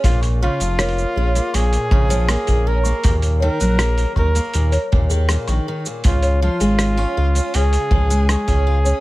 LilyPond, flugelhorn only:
\new Staff \with { instrumentName = "Flugelhorn" } { \time 4/4 \key des \major \tempo 4 = 80 f'8 f'4. aes'4 aes'8 bes'8 | r8 bes'4 bes'4 r4. | f'8 f'4. aes'4 aes'4 | }